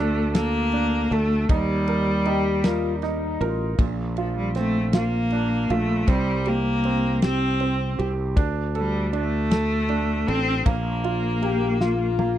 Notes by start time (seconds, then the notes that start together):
Already playing: D2 D4 A4
0.00 A3
0.35 A#3 A4, snare, ride
0.72 D4, ride
1.11 D2 A3 A4, ride
1.49 D#2 G3 D#4, kick, ride
1.88 A#4, ride
2.25 D#4 G4, ride
2.64 F4 A#4, snare, ride
2.96 D4
3.02 D#4, snare, ride
3.41 A1 F4 A#4, ride
3.79 A#1 A#2, kick, ride
4.17 F3 F4, ride
4.37 G3
4.55 A3 C4, snare, ride
4.93 A#3 F4, snare, ride
5.30 D4, ride
5.70 A#1 A3 F4, ride
6.08 C2 G3 C4, kick, ride
6.45 A#3 G4, ride
6.84 C4, ride
7.22 C4 G4, snare, ride
7.60 C4, ride
7.99 C2 G4, ride
8.36 D2 D4, kick, ride
8.75 G3 A4, ride
9.13 A3 D4, ride
9.51 A4, snare, ride
9.89 D4, ride
10.28 A1 C4 A4, ride
10.66 A#1 A#3, kick, ride
11.04 F4, ride
11.42 A#3 G4, ride
11.80 F4, snare
12.19 A#3, high tom